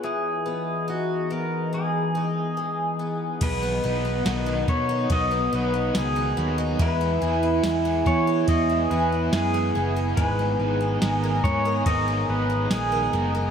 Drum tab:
CC |--------|x-------|--------|--------|
RD |--------|x-x-x-x-|x-x-x-x-|x-x-x-x-|
TB |--------|--x---x-|--x---x-|--x---x-|
SD |--------|--o---o-|--o---o-|--o---o-|
BD |--------|o--oo---|o--oo---|o--oo---|